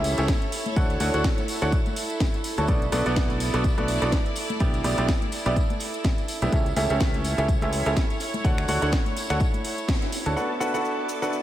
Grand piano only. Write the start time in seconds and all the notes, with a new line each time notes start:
Already playing: C#4 E4 G4 A4 E5
0.18 C#4 E4 G4 A4 E5
0.76 D4 F#4 A4 C#5 F#5
1.00 D4 F#4 A4 C#5 F#5
1.14 D4 F#4 A4 C#5 F#5
1.62 D4 F#4 A4 C#5 F#5
2.58 D4 F#4 A4 C#5 A5
2.68 B3 D4 F#4 A4 D5
2.92 B3 D4 F#4 A4 D5
3.06 B3 D4 F#4 A4 D5
3.54 B3 D4 F#4 A4 D5
3.78 B3 D4 F#4 A4 D5
4.02 B3 D4 F#4 A4 D5
4.60 B3 D4 E4 G4 D5
4.84 B3 D4 E4 G4 D5
4.98 B3 D4 E4 G4 D5
5.46 B3 D4 E4 G4 D5
6.42 B3 D4 E4 G4 E5
6.52 C#4 E4 G4 A4 E5
6.76 C#4 E4 G4 A4 E5
6.90 C#4 E4 G4 A4 E5
7.38 C#4 E4 G4 A4 E5
7.62 C#4 E4 G4 A4 E5
7.86 C#4 E4 G4 A4 E5
8.45 D4 F#4 A4 C#5 F#5
8.69 D4 F#4 A4 C#5 F#5
8.82 D4 F#4 A4 C#5 F#5
9.30 D4 F#4 A4 C#5 F#5
10.26 D4 F#4 A4 C#5 A5
10.36 D4 F#4 A4 B4 F#5
10.60 D4 F#4 A4 B4 F#5
10.74 D4 F#4 A4 B4 F#5
11.22 D4 F#4 A4 B4 F#5